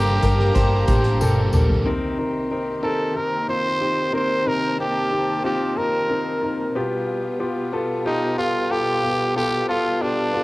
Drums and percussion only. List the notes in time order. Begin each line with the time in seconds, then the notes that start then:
0.22 kick, closed hi-hat, tambourine
0.39 snare
0.55 kick, closed hi-hat, tambourine
0.88 kick, closed hi-hat, tambourine
1.04 closed hi-hat
1.21 high tom, tambourine
1.53 mid tom, tambourine
1.69 floor tom